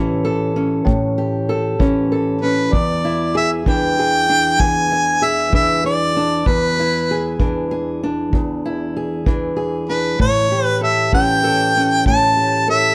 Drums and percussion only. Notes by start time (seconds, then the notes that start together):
0.87 kick
1.80 kick
2.73 kick
3.66 kick
4.60 kick
5.53 kick
6.46 kick
7.40 kick
8.33 kick
9.26 kick
10.20 kick
11.13 kick
12.06 kick